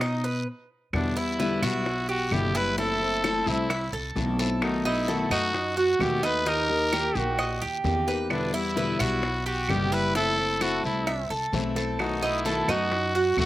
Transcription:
Already playing: upright bass B2, trumpet D#5
0.01 cuban tres D#4, muted steel-string acoustic guitar stroke, high bongo, long guiro, claves
0.24 cuban tres B4, high bongo
0.93 upright bass E2, steel-string acoustic guitar B2 D3 G3 B3 E4, trumpet D4, high bongo, long guiro, claves
1.16 steel-string acoustic guitar G3 B3 E4, cuban tres E4, trumpet E4, high bongo
1.39 steel-string acoustic guitar B2 D3 G3 B3 E4, cuban tres B4, high bongo, short guiro
1.62 upright bass B1, steel-string acoustic guitar G3 B3 E4, cuban tres E4, trumpet F#4, high bongo, short guiro, claves
1.86 muted steel-string acoustic guitar stroke, high bongo, long guiro
2.09 trumpet F#4, cuban tres G4, high bongo
2.31 upright bass F#1, steel-string acoustic guitar B2 D3 G3 B3 E4, trumpet G4, high bongo, low bongo, short guiro, claves
2.54 steel-string acoustic guitar G3 B3 E4, cuban tres E4, trumpet B4, short guiro
2.77 steel-string acoustic guitar E3 A3 C4 E4, cuban tres E4, trumpet A4, high bongo, long guiro
3.01 steel-string acoustic guitar A3 C4 E4, high bongo
3.24 steel-string acoustic guitar E3 A3 C4 E4, cuban tres A4, high bongo, short guiro, claves
3.46 upright bass C2, steel-string acoustic guitar A3 C4 E4, trumpet E4, high bongo, short guiro
3.70 cuban tres E5, muted steel-string acoustic guitar stroke, high bongo, long guiro, claves
3.93 upright bass C2, cuban tres A4, high bongo
4.16 upright bass B1, steel-string acoustic guitar E3 A3 C4 E4, high bongo, low bongo, short guiro
4.39 steel-string acoustic guitar A3 C4 E4, cuban tres A4, short guiro
4.62 steel-string acoustic guitar B2 D#3 A3 B3 F#4, trumpet D#4, high bongo, long guiro, claves
4.85 steel-string acoustic guitar A3 B3 F#4, cuban tres D#4, trumpet E4, high bongo
5.08 steel-string acoustic guitar B2 D#3 A3 B3 F#4, cuban tres A4, high bongo, short guiro
5.30 upright bass F#2, steel-string acoustic guitar A3 B3 F#4, cuban tres D#4, trumpet F#4, high bongo, short guiro, claves
5.54 muted steel-string acoustic guitar stroke, high bongo, long guiro
5.77 cuban tres F#4, trumpet F#4, high bongo
5.99 upright bass D#2, steel-string acoustic guitar B2 D#3 A3 B3 F#4, trumpet G4, high bongo, low bongo, short guiro, claves
6.23 steel-string acoustic guitar A3 B3 F#4, cuban tres D#4, trumpet B4, short guiro
6.46 steel-string acoustic guitar D#3 A#3 D#4 G4, cuban tres D#4, trumpet A#4, high bongo, long guiro
6.69 steel-string acoustic guitar A#3 D#4 G4, high bongo
6.92 steel-string acoustic guitar D#3 A#3 D#4 G4, cuban tres G4, high bongo, short guiro, claves
7.15 upright bass A#1, steel-string acoustic guitar A#3 D#4 G4, trumpet F#4, high bongo, short guiro
7.38 cuban tres D#5, muted steel-string acoustic guitar stroke, high bongo, long guiro, claves
7.61 upright bass D#2, cuban tres G4, high bongo
7.84 upright bass E2, steel-string acoustic guitar D#3 A#3 D#4 G4, high bongo, low bongo, short guiro
8.07 steel-string acoustic guitar A#3 D#4 G4, cuban tres B4, short guiro
8.30 steel-string acoustic guitar B2 D3 G3 B3 E4, trumpet D4, high bongo, long guiro, claves
8.53 steel-string acoustic guitar G3 B3 E4, cuban tres E4, trumpet E4, high bongo
8.76 steel-string acoustic guitar B2 D3 G3 B3 E4, cuban tres B4, high bongo, short guiro
8.99 upright bass B1, steel-string acoustic guitar G3 B3 E4, cuban tres E4, trumpet F#4, high bongo, short guiro, claves
9.22 muted steel-string acoustic guitar stroke, high bongo, long guiro
9.46 trumpet F#4, cuban tres G4, high bongo
9.68 upright bass F#1, steel-string acoustic guitar B2 D3 G3 B3 E4, trumpet G4, high bongo, low bongo, short guiro, claves
9.91 steel-string acoustic guitar G3 B3 E4, cuban tres E4, trumpet B4, short guiro
10.15 steel-string acoustic guitar E3 A3 C4 E4, cuban tres E4, trumpet A4, high bongo, long guiro
10.38 steel-string acoustic guitar A3 C4, high bongo
10.61 steel-string acoustic guitar E3 A3 C4 E4, trumpet F#4, cuban tres A4, high bongo, short guiro, claves
10.84 upright bass C2, steel-string acoustic guitar A3 C4 E4, trumpet E4, high bongo, short guiro
11.07 cuban tres E5, muted steel-string acoustic guitar stroke, high bongo, long guiro, claves
11.30 upright bass C2, cuban tres A4, high bongo
11.52 upright bass B1, steel-string acoustic guitar E3 A3 C4 E4, high bongo, low bongo, short guiro
11.76 steel-string acoustic guitar A3 C4 E4, cuban tres A4, short guiro
11.99 steel-string acoustic guitar B2 D#3 A3 B3 F#4, trumpet D#4, high bongo, long guiro, claves
12.22 steel-string acoustic guitar A3 B3 F#4, cuban tres D#4, trumpet E4, high bongo
12.45 steel-string acoustic guitar B2 D#3 A3 B3 F#4, cuban tres A4, high bongo, short guiro
12.68 upright bass F#2, steel-string acoustic guitar A3 B3 F#4, cuban tres D#4, trumpet F#4, high bongo, short guiro, claves
12.91 muted steel-string acoustic guitar stroke, high bongo, long guiro
13.15 cuban tres F#4, high bongo
13.37 upright bass D#2, steel-string acoustic guitar B2 D#3 A3 B3 F#4, trumpet F#4, high bongo, low bongo, short guiro, claves

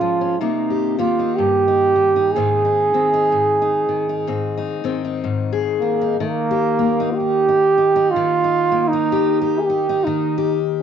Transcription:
Already playing: steel-string acoustic guitar G#2 G#3 C#4 F4, trombone F4
0.01 steel-string acoustic guitar F3
0.21 steel-string acoustic guitar C#4
0.40 steel-string acoustic guitar C3 A#3, trombone D#4
0.70 steel-string acoustic guitar G4
0.99 steel-string acoustic guitar D#3 A#3, trombone F4
1.19 steel-string acoustic guitar D#4
1.36 steel-string acoustic guitar G2, trombone G4
1.68 steel-string acoustic guitar D#4
1.96 steel-string acoustic guitar D#3
2.16 steel-string acoustic guitar D#4
2.32 steel-string acoustic guitar G#2, trombone G#4
2.36 steel-string acoustic guitar D#3 C4 D#4
2.65 steel-string acoustic guitar D#4
2.94 steel-string acoustic guitar D#3 C4
3.13 steel-string acoustic guitar D#4
3.32 steel-string acoustic guitar G#2
3.62 steel-string acoustic guitar D#4
3.89 steel-string acoustic guitar D#3
4.09 steel-string acoustic guitar D#4
4.28 steel-string acoustic guitar G#2 C4
4.58 steel-string acoustic guitar D#4
4.84 steel-string acoustic guitar D#3 C4
5.04 steel-string acoustic guitar D#4
5.24 steel-string acoustic guitar G#2
5.52 steel-string acoustic guitar G#4
5.80 steel-string acoustic guitar D#3, trombone A#3
6.02 steel-string acoustic guitar D#4
6.21 steel-string acoustic guitar D#3, trombone A#3
6.51 steel-string acoustic guitar G4
6.79 steel-string acoustic guitar A#3
7.00 steel-string acoustic guitar D#4
7.11 trombone F4
7.15 trombone G4
7.20 steel-string acoustic guitar D#4
7.49 steel-string acoustic guitar D#4
7.78 steel-string acoustic guitar D#4
7.96 steel-string acoustic guitar D#4
8.11 trombone F4
8.16 steel-string acoustic guitar D#3
8.44 steel-string acoustic guitar D#4
8.72 steel-string acoustic guitar A#3
8.88 trombone D#4
8.93 steel-string acoustic guitar D#4
9.12 steel-string acoustic guitar G4
9.42 steel-string acoustic guitar G4
9.59 trombone G#4
9.65 trombone G4
9.70 steel-string acoustic guitar D#4
9.89 steel-string acoustic guitar D#4
10.04 steel-string acoustic guitar D#3, trombone D#4
10.38 steel-string acoustic guitar G4

